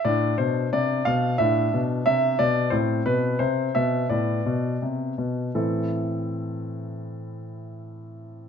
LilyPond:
<<
  \new Staff \with { instrumentName = "Grand piano" } { \time 2/4 \key a \minor \tempo 4 = 86 << { d''8 c''8 d''8 f''8 | e''4 e''8 d''8 | c''8 b'8 c''8 e''8 | d''4 r4 |
<a, e c' e' a'>2~ | <a, e c' e' a'>2 | } \\ { d'2 | d'2 | c'2 | b2 |
r2 | r2 | } >> }
  \new Staff \with { instrumentName = "Grand piano" } { \clef bass \time 2/4 \key a \minor a,8 b,8 c8 b,8 | a,8 b,8 c8 b,8 | a,8 b,8 c8 b,8 | a,8 b,8 c8 b,8 |
r2 | r2 | }
>>